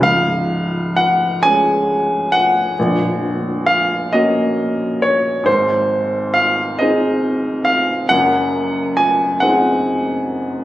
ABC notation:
X:1
M:12/8
L:1/8
Q:3/8=45
K:Db
V:1 name="Grand piano"
f2 g a2 g3 f e2 d | c2 f e2 f g2 a g3 |]
V:2 name="Grand piano"
[D,,,D,,]3 [A,DA]3 [B,,,,B,,,]3 [B,DG]3 | [A,,,A,,]3 [CEA]3 [G,,,G,,]3 [CEA]3 |]